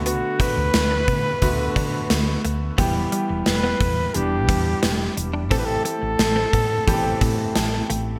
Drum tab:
HH |xxxxxxxx|xxxxxxxx|xxxxxxxx|
SD |--o---o-|--o---o-|--o---o-|
BD |-o-ooo--|o--o-o--|o--ooo--|